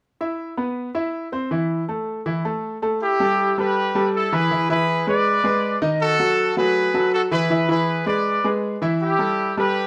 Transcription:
0.21 0.51 E4 medium
0.21 0.51 E5 medium
0.57 0.88 B3 medium
0.57 0.89 B4 medium
0.95 1.26 E4 medium
0.95 1.26 E5 medium
1.32 1.48 C4 medium
1.32 1.48 C5 medium
1.51 1.82 E3 medium
1.51 1.82 E4 medium
1.88 2.19 A3 medium
1.88 2.20 A4 medium
2.26 2.41 E3 medium
2.26 2.41 E4 medium
2.45 2.76 A3 medium
2.45 2.76 A4 medium
2.82 2.98 A3 medium
2.82 2.98 A4 medium
3.02 3.54 E4 medium
3.02 3.54 G4 medium
3.20 3.51 G3 medium
3.20 3.51 G4 medium
3.20 3.51 A4 medium
3.58 3.88 G3 medium
3.58 3.89 G4 medium
3.58 4.11 G4 medium
3.58 3.89 A4 medium
3.58 4.10 B4 medium
3.95 4.26 G3 medium
3.95 4.26 G4 medium
3.95 4.26 A4 medium
4.15 4.32 E4 medium
4.15 4.32 A4 medium
4.32 4.48 E3 medium
4.32 4.48 E4 medium
4.32 4.70 G#4 medium
4.32 4.70 B4 medium
4.32 4.48 E5 medium
4.51 4.66 E3 medium
4.51 4.67 E4 medium
4.51 4.67 E5 medium
4.69 5.00 E3 medium
4.69 5.01 E4 medium
4.69 5.05 G#4 medium
4.69 5.05 B4 medium
4.69 5.01 E5 medium
5.07 5.38 G#3 medium
5.07 5.38 G#4 medium
5.07 5.38 B4 medium
5.07 5.79 B4 medium
5.07 5.79 D5 medium
5.44 5.75 G#3 medium
5.44 5.75 G#4 medium
5.44 5.75 B4 medium
5.82 6.13 D#3 medium
5.82 6.13 D#4 medium
5.82 6.13 D#5 medium
6.02 6.54 F#4 medium
6.02 6.54 A4 loud
6.19 6.50 F#3 medium
6.19 6.50 F#4 medium
6.19 6.50 A4 medium
6.57 6.88 F#3 medium
6.57 6.88 A3 medium
6.57 6.88 F#4 medium
6.57 7.10 G#4 medium
6.57 7.10 B4 medium
6.94 7.25 F#3 medium
6.94 7.25 F#4 medium
6.94 7.25 A4 medium
7.14 7.23 F#4 medium
7.14 7.22 A4 medium
7.31 7.47 E3 medium
7.31 7.47 E4 medium
7.31 7.67 G#4 medium
7.31 7.67 B4 medium
7.31 7.47 E5 medium
7.50 7.66 E3 medium
7.50 7.66 E4 medium
7.50 7.66 E5 medium
7.69 8.00 E3 medium
7.69 8.00 E4 medium
7.69 8.05 G#4 medium
7.69 8.05 B4 medium
7.69 8.00 E5 medium
8.06 8.37 G#3 medium
8.06 8.37 G#4 medium
8.06 8.37 B4 medium
8.06 8.52 B4 medium
8.06 8.51 D5 medium
8.44 8.75 G#3 medium
8.44 8.75 G#4 medium
8.44 8.75 B4 medium
8.82 9.12 E3 medium
8.82 9.13 E4 medium
8.82 9.13 E5 medium
9.02 9.54 E4 medium
9.02 9.54 G4 medium
9.19 9.50 G3 medium
9.19 9.50 G4 medium
9.19 9.50 A4 medium
9.57 9.87 G3 medium
9.57 9.87 G4 medium
9.57 9.87 A4 medium
9.57 9.87 B4 medium

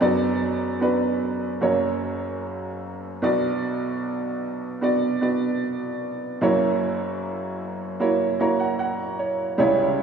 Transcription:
0.01 1.58 F#1 medium
0.01 1.58 F#2 medium
0.01 0.60 B3 medium
0.01 0.61 D4 medium
0.01 0.61 F#4 medium
0.01 0.61 D5 medium
0.80 1.40 B3 medium
0.80 1.41 D4 medium
0.80 1.41 F#4 medium
0.80 1.42 B4 medium
1.61 3.18 F#1 medium
1.61 3.18 F#2 medium
1.61 2.80 A#3 medium
1.61 2.81 C#4 medium
1.61 2.81 F#4 medium
1.61 2.81 C#5 medium
3.22 6.38 B1 medium
3.22 6.38 B2 medium
3.22 4.41 B3 medium
3.22 4.41 D4 medium
3.22 4.41 F#4 medium
3.22 4.42 D5 medium
4.81 5.11 B3 medium
4.81 5.12 D4 medium
4.81 5.12 F#4 medium
4.81 5.13 D5 medium
5.21 6.10 B3 medium
5.21 6.10 D4 medium
5.21 6.11 F#4 medium
5.21 6.11 D5 medium
6.41 9.55 F#1 medium
6.41 9.55 F#2 medium
6.41 7.59 A#3 medium
6.41 7.59 E4 medium
6.41 7.60 F#4 medium
6.41 7.60 C#5 medium
8.00 8.29 A#3 medium
8.00 8.30 E4 medium
8.00 8.30 F#4 medium
8.00 8.30 C#5 medium
8.39 9.28 A#3 medium
8.39 9.28 E4 medium
8.39 9.28 F#4 medium
8.39 9.18 C#5 medium
8.39 8.59 A#5 medium
8.60 8.78 F#5 medium
8.79 9.16 F#5 medium
9.19 9.56 C#5 medium
9.58 10.03 C#2 medium
9.58 10.03 C#3 medium
9.58 10.03 G3 medium
9.58 10.03 C#4 medium
9.58 10.03 E4 medium
9.58 10.03 C#5 medium

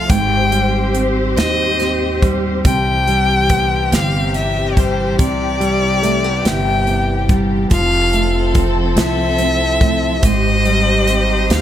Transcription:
0.00 0.18 A3 medium
0.00 0.93 C4 medium
0.00 0.12 F5 medium
0.08 1.33 G#1 loud
0.08 2.65 G#2 medium
0.08 2.62 C4 medium
0.08 2.62 G4 medium
0.08 2.62 C5 medium
0.08 0.95 G5 loud
0.08 kick loud
0.08 closed hi-hat medium
0.51 2.22 G3 medium
0.51 closed hi-hat soft
0.93 1.79 C4 soft
0.93 closed hi-hat medium
1.37 2.61 D#2 medium
1.37 2.74 D#4 medium
1.37 2.19 D#5 loud
1.37 snare loud
1.37 closed hi-hat medium
1.79 3.50 C4 medium
1.79 snare soft
1.79 closed hi-hat soft
2.22 3.07 G3 medium
2.22 kick medium
2.22 closed hi-hat soft
2.64 3.88 C2 loud
2.64 7.67 C3 medium
2.64 5.17 C3 medium
2.64 7.67 E3 medium
2.64 7.67 G4 medium
2.64 3.95 G5 loud
2.64 kick loud
2.64 closed hi-hat medium
3.08 4.76 G3 medium
3.08 closed hi-hat soft
3.49 4.35 B3 medium
3.49 kick loud
3.49 closed hi-hat medium
3.92 5.19 G1 medium
3.92 4.35 F5 loud
3.92 snare medium
3.92 closed hi-hat medium
4.34 4.79 E5 medium
4.34 closed hi-hat soft
4.77 5.59 G3 medium
4.77 5.20 C5 medium
4.77 kick medium
4.77 closed hi-hat soft
5.18 6.41 C2 medium
5.18 7.69 C3 medium
5.18 6.48 D5 loud
5.18 kick loud
5.18 closed hi-hat medium
5.60 7.27 G3 medium
5.60 closed hi-hat soft
6.02 6.24 A3 medium
6.02 closed hi-hat medium
6.24 6.86 B3 soft
6.45 7.67 G1 medium
6.45 8.96 E4 medium
6.45 7.30 G5 medium
6.45 snare loud
6.45 closed hi-hat medium
6.87 7.79 B3 medium
6.87 closed hi-hat soft
7.29 7.79 G3 medium
7.29 kick medium
7.29 closed hi-hat soft
7.69 8.93 F1 medium
7.69 10.23 F3 medium
7.69 10.20 F3 medium
7.69 10.20 C4 medium
7.69 10.20 A4 medium
7.69 8.52 F5 loud
7.69 kick loud
7.69 closed hi-hat medium
8.13 9.79 A3 medium
8.13 closed hi-hat soft
8.54 9.38 C4 medium
8.54 kick medium
8.54 closed hi-hat soft
8.96 10.19 C2 medium
8.96 10.32 E4 medium
8.96 10.26 E5 loud
8.96 snare loud
8.96 closed hi-hat medium
9.38 11.07 C4 medium
9.38 closed hi-hat soft
9.81 10.31 A3 medium
9.81 kick medium
9.81 closed hi-hat soft
10.23 11.46 G#1 medium
10.23 11.62 G#2 medium
10.23 11.62 C3 medium
10.23 11.62 G4 medium
10.23 11.62 C5 medium
10.23 11.54 D#5 loud
10.23 kick loud
10.23 closed hi-hat medium
10.65 11.62 G3 medium
10.65 closed hi-hat soft
11.07 11.62 C4 medium
11.07 closed hi-hat medium
11.50 11.62 D#2 medium
11.50 11.62 D#4 medium
11.50 11.62 F5 loud
11.50 snare loud
11.50 closed hi-hat medium

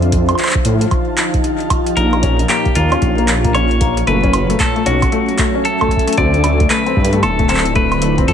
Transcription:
0.00 0.34 F2 loud
0.00 1.96 F3 medium
0.00 0.71 F4 medium
0.00 0.72 C5 medium
0.00 closed hi-hat soft
0.12 kick loud
0.12 closed hi-hat medium
0.29 2.82 A5 medium
0.29 closed hi-hat medium
0.29 high woodblock medium
0.35 clap medium
0.35 closed hi-hat medium
0.35 high woodblock medium
0.40 4.07 F5 medium
0.40 clap medium
0.40 high woodblock soft
0.47 2.82 D#4 medium
0.47 clap medium
0.51 clap loud
0.55 kick loud
0.65 0.86 A2 loud
0.65 closed hi-hat medium
0.81 2.82 G4 medium
0.81 closed hi-hat medium
0.91 kick loud
0.91 closed hi-hat medium
0.91 high woodblock soft
1.18 clap loud
1.18 closed hi-hat medium
1.34 kick loud
1.34 closed hi-hat soft
1.44 closed hi-hat soft
1.60 closed hi-hat soft
1.70 kick loud
1.70 closed hi-hat medium
1.70 high woodblock medium
1.87 closed hi-hat soft
1.97 2.45 A#1 loud
1.97 4.07 A#2 medium
1.97 2.49 A#4 medium
1.97 closed hi-hat medium
2.13 2.19 A#3 medium
2.13 4.07 A#3 medium
2.13 closed hi-hat soft
2.13 high woodblock medium
2.19 2.37 C#4 medium
2.19 4.93 C#5 medium
2.23 kick loud
2.23 closed hi-hat medium
2.39 closed hi-hat soft
2.49 2.64 A#3 medium
2.49 2.76 G4 medium
2.49 clap loud
2.49 closed hi-hat soft
2.65 kick loud
2.65 closed hi-hat soft
2.74 2.96 D#2 loud
2.74 2.85 A#3 medium
2.74 4.07 F4 medium
2.74 3.57 F4 medium
2.74 closed hi-hat medium
2.92 3.01 C#4 medium
2.92 closed hi-hat medium
2.92 high woodblock medium
3.02 4.03 A#1 medium
3.02 kick loud
3.02 closed hi-hat soft
3.18 3.27 A#3 medium
3.18 closed hi-hat soft
3.28 clap loud
3.28 closed hi-hat medium
3.44 3.50 A#3 medium
3.44 kick loud
3.44 closed hi-hat soft
3.54 3.69 C#4 medium
3.54 4.03 C#5 loud
3.54 closed hi-hat soft
3.54 high woodblock soft
3.71 closed hi-hat soft
3.81 3.95 A#3 medium
3.81 kick loud
3.81 closed hi-hat medium
3.97 closed hi-hat soft
4.07 4.55 F#1 loud
4.07 6.18 F#3 medium
4.07 4.17 A3 medium
4.07 4.60 B4 loud
4.07 closed hi-hat soft
4.23 4.32 C#4 medium
4.23 kick loud
4.23 closed hi-hat soft
4.28 6.18 C#4 medium
4.33 closed hi-hat medium
4.33 high woodblock medium
4.50 4.59 A3 medium
4.50 closed hi-hat soft
4.60 4.87 A4 medium
4.60 kick loud
4.60 clap loud
4.60 closed hi-hat soft
4.76 4.82 A3 medium
4.76 closed hi-hat soft
4.82 5.07 B1 loud
4.82 5.01 C#4 medium
4.82 5.67 F#4 medium
4.82 7.03 A4 medium
4.82 closed hi-hat medium
5.02 7.03 E5 medium
5.02 6.18 G#5 medium
5.02 kick loud
5.02 closed hi-hat medium
5.02 high woodblock medium
5.12 5.27 A3 medium
5.12 closed hi-hat medium
5.29 closed hi-hat soft
5.38 5.48 A3 medium
5.38 kick loud
5.38 clap loud
5.38 closed hi-hat medium
5.55 5.64 C#4 medium
5.65 6.17 A4 loud
5.65 closed hi-hat medium
5.81 5.90 A3 medium
5.81 kick soft
5.81 closed hi-hat soft
5.81 high woodblock medium
5.88 kick medium
5.88 closed hi-hat soft
5.97 kick medium
5.97 closed hi-hat medium
6.07 6.13 A3 medium
6.07 closed hi-hat medium
6.13 closed hi-hat medium
6.17 6.66 D2 loud
6.17 8.28 D3 medium
6.17 6.32 C4 medium
6.17 6.70 D5 loud
6.17 kick loud
6.17 closed hi-hat medium
6.34 closed hi-hat soft
6.44 6.58 A3 medium
6.44 closed hi-hat medium
6.44 high woodblock medium
6.60 kick loud
6.60 closed hi-hat soft
6.70 6.80 A3 medium
6.70 7.23 B4 loud
6.70 clap loud
6.70 closed hi-hat medium
6.76 8.33 C4 medium
6.86 6.95 C4 medium
6.86 closed hi-hat soft
6.97 7.24 G2 loud
6.97 kick loud
7.05 closed hi-hat medium
7.13 7.22 A3 medium
7.13 8.28 E4 medium
7.13 8.33 F4 medium
7.13 8.28 D5 medium
7.13 closed hi-hat medium
7.23 8.24 D1 medium
7.23 7.48 A4 loud
7.23 closed hi-hat medium
7.23 high woodblock medium
7.39 7.45 A3 medium
7.39 kick loud
7.39 closed hi-hat soft
7.49 7.64 C4 medium
7.49 7.75 A4 medium
7.49 clap medium
7.49 closed hi-hat medium
7.55 clap medium
7.58 clap medium
7.65 closed hi-hat medium
7.75 7.90 A3 medium
7.75 8.25 B4 loud
7.75 kick loud
7.75 closed hi-hat soft
7.92 closed hi-hat soft
7.92 high woodblock medium
8.02 8.12 A3 medium
8.02 closed hi-hat medium
8.18 8.27 C4 medium
8.18 kick loud
8.18 closed hi-hat soft
8.28 8.33 F2 loud
8.28 8.33 F3 medium
8.28 8.33 A4 medium
8.28 closed hi-hat medium

